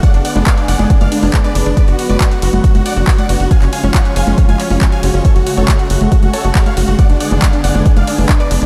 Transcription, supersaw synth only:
0.03 0.11 D5 medium
0.03 0.11 F#5 medium
0.14 0.21 D4 medium
0.25 0.32 D5 medium
0.25 0.32 F#5 medium
0.36 0.43 D4 medium
0.47 0.54 D5 medium
0.47 0.54 F5 medium
0.57 0.65 D4 medium
0.68 0.76 D5 medium
0.68 0.76 F#5 loud
0.79 0.87 D4 medium
0.90 0.98 D4 medium
1.01 1.08 D5 medium
1.01 1.08 F5 loud
1.12 1.19 D4 medium
1.23 1.30 D4 medium
1.33 1.41 D4 medium
1.44 1.52 B4 medium
1.44 1.52 D5 medium
1.55 1.63 D4 medium
1.66 1.74 D4 medium
1.77 1.84 B4 medium
1.77 1.84 D5 loud
1.88 1.95 F#4 medium
1.99 2.06 F#4 medium
2.10 2.17 B4 medium
2.10 2.17 D5 medium
2.20 2.28 F#4 medium
2.31 2.39 F#4 medium
2.42 2.50 F#4 medium
2.64 2.71 F#4 medium
2.75 2.82 F#4 medium
2.86 2.93 D5 medium
2.86 2.93 F#5 medium
2.97 3.04 F#4 medium
3.07 3.15 F#4 medium
3.18 3.26 D5 medium
3.18 3.26 F#5 medium
3.29 3.37 F#4 medium
3.40 3.48 F#4 medium
3.51 3.58 F5 medium
3.51 3.58 G#5 medium
3.62 3.69 C#4 medium
3.73 3.80 F5 medium
3.73 3.80 G#5 medium
3.83 3.91 C#4 medium
3.94 4.02 C#5 medium
3.94 4.02 F#5 medium
4.05 4.13 C#4 medium
4.16 4.24 F5 medium
4.16 4.24 G#5 loud
4.27 4.35 C#4 medium
4.38 4.45 C#4 medium
4.49 4.56 F5 medium
4.49 4.56 G#5 medium
4.60 4.67 C#4 medium
4.70 4.78 C#4 medium
4.81 4.89 C#4 medium
4.92 5.00 F5 medium
4.92 5.00 G#5 medium
5.03 5.11 C#4 medium
5.14 5.21 C#4 medium
5.25 5.32 A4 medium
5.25 5.32 C#5 loud
5.36 5.43 F#4 medium
5.47 5.54 F#4 medium
5.57 5.65 A4 medium
5.57 5.65 C#5 medium
5.68 5.76 F#4 medium
5.79 5.87 F#4 medium
5.90 5.98 F#4 medium
6.12 6.19 F#4 medium
6.23 6.30 F#4 medium
6.34 6.41 A4 medium
6.34 6.41 C#5 medium
6.44 6.52 F#4 medium
6.55 6.63 F#4 medium
6.66 6.74 C#5 medium
6.66 6.74 F5 loud
6.77 6.85 F#4 medium
6.88 6.95 F#4 medium
6.99 7.06 D5 medium
6.99 7.06 F#5 medium
7.09 7.17 D4 medium
7.20 7.28 D5 medium
7.20 7.28 F#5 medium
7.31 7.39 D4 medium
7.42 7.50 D5 medium
7.42 7.50 F5 medium
7.53 7.61 D4 medium
7.64 7.71 D5 medium
7.64 7.71 F#5 loud
7.75 7.82 D4 medium
7.86 7.93 D4 medium
7.97 8.04 D5 medium
7.97 8.04 F5 loud
8.07 8.15 D4 medium
8.18 8.26 D4 medium
8.29 8.37 D4 medium
8.40 8.48 B4 medium
8.40 8.48 D5 loud
8.51 8.58 D4 medium
8.62 8.66 D4 medium

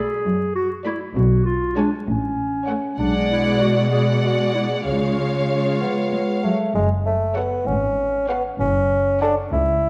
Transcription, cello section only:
0.25 0.99 F#2 medium
1.16 1.90 B2 medium
2.07 2.82 A2 medium
2.99 4.82 B2 soft
4.86 5.73 C#3 soft
5.81 5.89 F3 soft
6.12 6.20 G#3 soft
6.43 6.51 F#3 soft
6.75 7.49 F#2 medium
7.67 8.42 G#2 medium
8.60 9.35 F#2 medium
9.53 9.89 C#2 soft

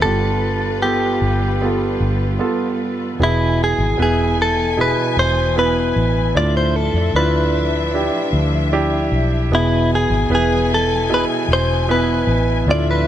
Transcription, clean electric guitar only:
0.02 0.82 A4 medium
0.82 2.76 G4 medium
3.23 3.62 E4 medium
3.64 3.98 G#4 medium
4.02 4.37 G#4 medium
4.42 4.81 A4 medium
4.81 5.19 B4 medium
5.19 5.55 C5 medium
5.59 6.37 B4 medium
6.37 6.57 D5 medium
6.57 6.76 C5 medium
6.76 7.16 A4 medium
7.16 8.69 B4 medium
9.55 9.90 E4 medium
9.95 10.34 G#4 medium
10.35 10.73 G#4 medium
10.74 11.13 A4 medium
11.14 11.24 B4 medium
11.53 11.91 C5 medium
11.91 12.71 B4 medium
12.71 12.88 D5 loud
12.91 13.07 B4 medium

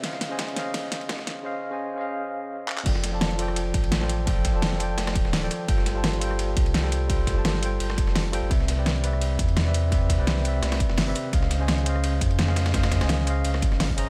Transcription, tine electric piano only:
0.02 0.28 C#3 medium
0.02 0.28 C#4 medium
0.02 0.29 C5 medium
0.02 0.29 D#5 medium
0.02 0.29 F5 loud
0.29 0.52 C#3 medium
0.29 0.54 C#4 medium
0.29 0.55 C5 medium
0.29 0.55 D#5 medium
0.29 0.55 G#5 medium
0.53 1.41 C#3 medium
0.53 1.42 C#4 medium
0.53 1.43 C5 medium
0.58 1.44 D#5 medium
0.58 1.44 F5 loud
1.43 1.69 C#3 medium
1.43 1.69 C#4 medium
1.43 1.70 C5 medium
1.43 1.70 D#5 medium
1.43 1.70 F5 loud
1.70 1.93 C#3 medium
1.70 1.95 C#4 medium
1.70 1.96 C5 medium
1.70 1.96 D#5 medium
1.70 1.97 G#5 medium
1.95 2.82 C#3 medium
1.95 2.83 C#4 medium
1.95 2.84 C5 medium
1.99 2.85 D#5 medium
1.99 2.86 F5 loud
2.84 3.10 F3 medium
2.84 3.11 F4 medium
2.84 3.11 A4 medium
2.84 3.11 D5 medium
2.84 3.12 G5 medium
3.12 3.35 F3 medium
3.12 3.36 F4 medium
3.12 3.37 A4 medium
3.12 3.37 D5 medium
3.12 3.38 A5 medium
3.36 3.98 F3 medium
3.36 3.99 F4 medium
3.36 4.00 A4 medium
3.41 4.00 D5 medium
3.41 4.01 G5 loud
4.00 4.05 F3 medium
4.00 4.06 F4 medium
4.00 4.06 A4 medium
4.00 4.06 D5 medium
4.00 4.07 G5 medium
4.26 4.51 F3 medium
4.26 4.52 F4 medium
4.26 4.52 A4 medium
4.26 4.53 D5 medium
4.26 4.53 G5 loud
4.53 4.76 F3 medium
4.53 4.77 F4 medium
4.53 4.78 A4 medium
4.53 4.79 D5 medium
4.53 4.79 A5 medium
4.77 5.39 F3 medium
4.77 5.40 F4 medium
4.77 5.41 A4 medium
4.82 5.41 D5 medium
4.82 5.42 G5 loud
5.41 5.46 F3 medium
5.41 5.47 F4 medium
5.41 5.47 A4 medium
5.41 5.48 D5 medium
5.41 5.48 G5 medium
5.67 5.93 G3 medium
5.67 5.93 F4 medium
5.67 5.93 A4 medium
5.67 5.94 C5 medium
5.67 5.94 G5 medium
5.94 6.17 G3 medium
5.94 6.19 F4 medium
5.94 6.20 A4 medium
5.94 6.20 C5 medium
5.94 6.20 A5 medium
6.18 6.80 G3 medium
6.18 6.81 F4 medium
6.18 6.82 A4 medium
6.23 6.83 C5 medium
6.23 6.84 G5 loud
6.82 6.88 G3 medium
6.82 6.88 F4 medium
6.82 6.88 A4 medium
6.82 6.89 C5 medium
6.82 6.89 G5 medium
7.08 7.34 G3 medium
7.08 7.34 F4 medium
7.08 7.34 A4 medium
7.08 7.35 C5 medium
7.08 7.35 G5 loud
7.35 7.58 G3 medium
7.35 7.60 F4 medium
7.35 7.61 A4 medium
7.35 7.61 C5 medium
7.35 7.62 A5 medium
7.59 8.21 G3 medium
7.59 8.22 F4 medium
7.59 8.23 A4 medium
7.64 8.24 C5 medium
7.64 8.25 G5 loud
8.32 8.48 G3 loud
8.32 8.48 F4 medium
8.32 8.49 A4 medium
8.32 8.49 C5 medium
8.32 8.50 G5 loud
8.49 8.75 C3 medium
8.49 8.75 C4 medium
8.49 8.76 B4 medium
8.49 8.76 D5 medium
8.49 8.76 E5 medium
8.76 9.00 C3 medium
8.76 9.01 C4 medium
8.76 9.02 B4 medium
8.76 9.02 D5 medium
8.76 9.03 G5 medium
9.01 9.63 C3 medium
9.01 9.64 C4 medium
9.01 9.64 B4 medium
9.06 9.65 D5 medium
9.06 9.66 E5 loud
9.65 9.70 C3 medium
9.65 9.70 C4 medium
9.65 9.71 B4 medium
9.65 9.71 D5 medium
9.65 9.72 E5 medium
9.90 10.16 C3 medium
9.90 10.17 C4 medium
9.90 10.17 B4 medium
9.90 10.17 D5 medium
9.90 10.18 E5 medium
10.18 10.41 C3 medium
10.18 10.42 C4 medium
10.18 10.43 B4 medium
10.18 10.43 D5 medium
10.18 10.44 G5 medium
10.42 11.04 C3 medium
10.42 11.05 C4 medium
10.42 11.06 B4 medium
10.47 11.06 D5 medium
10.47 11.07 E5 loud
11.06 11.11 C3 medium
11.06 11.12 C4 medium
11.06 11.12 B4 medium
11.06 11.12 D5 medium
11.06 11.13 E5 medium
11.32 11.57 C#3 medium
11.32 11.58 C#4 medium
11.32 11.58 C5 medium
11.32 11.59 D#5 medium
11.32 11.59 F5 loud
11.59 11.82 C#3 medium
11.59 11.83 C#4 medium
11.59 11.84 C5 medium
11.59 11.85 D#5 medium
11.59 11.85 G#5 medium
11.83 12.45 C#3 medium
11.83 12.46 C#4 medium
11.83 12.47 C5 medium
11.88 12.47 D#5 medium
11.88 12.48 F5 loud
12.47 12.52 C#3 medium
12.47 12.53 C#4 medium
12.47 12.53 C5 medium
12.47 12.54 D#5 medium
12.47 12.54 F5 medium
12.73 12.98 C#3 medium
12.73 12.99 C#4 medium
12.73 12.99 C5 medium
12.73 13.00 D#5 medium
12.73 13.00 F5 medium
13.00 13.23 C#3 medium
13.00 13.24 C#4 medium
13.00 13.25 C5 medium
13.00 13.26 D#5 medium
13.00 13.26 G#5 medium
13.24 13.86 C#3 medium
13.24 13.87 C#4 medium
13.24 13.88 C5 medium
13.29 13.88 D#5 medium
13.29 13.89 F5 loud
13.96 14.09 C#3 loud
13.96 14.09 C#4 medium
13.96 14.09 C5 medium
13.96 14.09 D#5 medium
13.96 14.09 A#5 loud

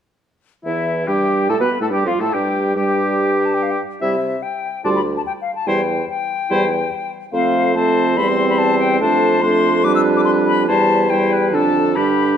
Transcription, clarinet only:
0.65 1.05 E4 soft
1.08 1.51 G4 medium
1.50 1.62 A4 medium
1.61 1.81 B4 medium
1.81 1.91 A4 soft
1.91 2.07 G4 medium
2.05 2.21 F4 soft
2.20 2.34 A4 soft
2.33 2.75 G4 soft
2.76 3.79 G4 medium
4.01 4.16 E4 soft
4.85 5.00 F4 soft
5.67 5.82 E4 soft
6.51 6.65 E4 medium
7.33 7.72 C4 medium
7.76 8.16 C4 medium
8.17 9.02 C4 medium
9.01 9.41 D4 medium
9.42 9.83 D4 medium
9.84 10.67 D4 medium
10.68 11.08 E4 medium
11.10 11.55 E4 medium
11.54 11.95 D4 medium
11.96 12.37 D4 medium

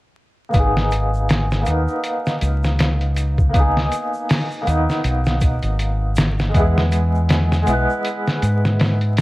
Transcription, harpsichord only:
0.50 1.61 A#3 medium
0.50 1.62 B3 medium
0.56 1.64 D#4 medium
0.56 1.66 G#4 medium
1.62 3.48 A#3 medium
1.62 3.50 B3 medium
1.68 3.51 D#4 medium
1.68 3.53 A#4 medium
3.49 4.61 A#3 medium
3.49 4.62 B3 medium
3.56 4.64 D#4 medium
3.56 4.66 G#4 medium
4.62 6.48 A#3 medium
4.62 6.50 B3 medium
4.68 6.51 D#4 medium
4.68 6.53 A#4 medium
6.49 7.61 G#3 medium
6.49 7.62 B3 medium
6.56 7.64 E4 medium
6.56 7.65 G#4 medium
7.62 9.21 G#3 medium
7.62 9.21 B3 medium
7.69 9.21 E4 medium
7.69 9.21 B4 medium

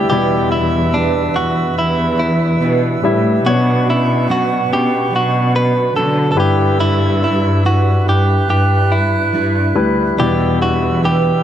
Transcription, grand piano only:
0.00 0.11 G3 medium
0.00 0.11 E4 soft
0.00 0.12 D5 medium
0.11 1.32 B2 soft
0.11 1.69 G3 medium
0.11 1.70 E4 soft
0.11 1.70 D5 medium
3.04 3.43 G3 medium
3.04 3.44 E4 soft
3.04 3.44 E5 medium
3.46 5.04 B3 medium
3.46 5.04 D4 soft
3.46 5.05 C#5 medium
6.37 7.60 G2 soft
6.37 7.60 D3 soft
6.37 7.97 G3 medium
6.37 7.98 E4 soft
6.37 7.98 B4 medium
9.75 10.16 G3 medium
9.75 10.16 E4 soft
9.75 10.16 B4 medium
10.19 11.41 B2 soft
10.19 11.43 G3 medium
10.19 11.43 E4 soft
10.19 11.43 D5 medium

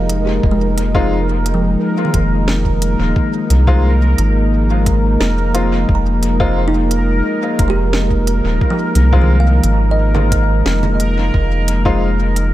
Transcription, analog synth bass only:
0.00 0.40 F1 medium
0.43 1.76 F1 loud
2.14 2.96 F1 loud
2.99 3.14 D#1 medium
3.50 4.15 C2 medium
4.18 5.17 G#1 medium
5.20 5.86 F1 medium
5.89 7.22 F1 medium
7.59 8.41 F1 loud
8.44 8.59 D#1 medium
8.95 9.60 C2 medium
9.64 10.63 G#1 medium
10.66 11.31 F1 medium
11.34 12.54 F1 loud

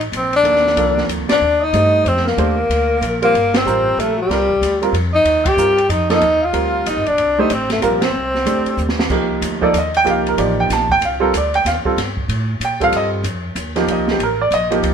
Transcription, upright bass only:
0.00 0.11 A1 medium
0.12 0.43 A#1 medium
0.44 0.76 D#2 medium
0.76 1.08 C2 medium
1.09 1.19 D2 medium
1.19 1.29 C2 soft
1.30 1.40 A#1 medium
1.41 1.73 D#2 medium
1.73 2.04 G2 medium
2.05 2.37 F2 medium
2.38 2.69 D#2 medium
2.69 3.01 D2 medium
3.01 3.33 A#1 medium
3.33 3.65 G1 medium
3.65 3.96 A1 medium
3.97 4.29 A#1 medium
4.29 4.61 C2 medium
4.62 4.92 D2 medium
4.93 5.24 F2 medium
5.25 5.56 D#2 medium
5.57 5.88 G2 medium
5.89 6.21 F2 medium
6.22 6.53 D#2 medium
6.53 6.85 D2 medium
6.86 6.96 A#1 medium
6.96 7.07 G1 soft
7.07 7.17 D#1 medium
7.18 7.49 C2 medium
7.50 7.81 A1 medium
7.82 8.13 A#1 medium
8.13 8.44 C2 medium
8.45 8.64 D2 medium
8.65 muted upright bass stroke soft
8.77 9.09 D#2 medium
9.10 9.41 C2 medium
9.42 9.73 D2 medium
9.74 10.05 D#2 medium
10.06 10.37 C2 medium
10.38 10.69 A1 medium
10.70 11.01 A#1 medium
11.01 11.32 C2 medium
11.34 11.65 D2 medium
11.65 11.84 D#2 medium
11.85 muted upright bass stroke soft
11.96 12.28 G2 medium
12.28 12.59 A2 medium
12.60 12.92 A#2 medium
12.92 13.23 G2 medium
13.23 13.55 F2 medium
13.55 13.87 D#2 medium
13.87 14.19 C2 medium
14.19 14.50 A1 medium
14.51 14.82 A#1 loud
14.83 14.94 C2 medium

